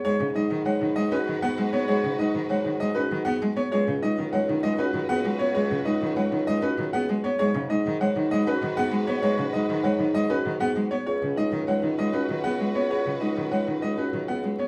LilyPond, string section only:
\new Staff \with { instrumentName = "String section" } { \time 6/4 \key gis \minor \tempo 4 = 196 <fis' b'>1.~ | <fis' b'>1~ <fis' b'>4. r8 | <fis' b'>1.~ | <fis' b'>1~ <fis' b'>4. r8 |
<fis' b'>1.~ | <fis' b'>1~ <fis' b'>4. r8 | <fis' b'>1.~ | <fis' b'>1~ <fis' b'>4. r8 | }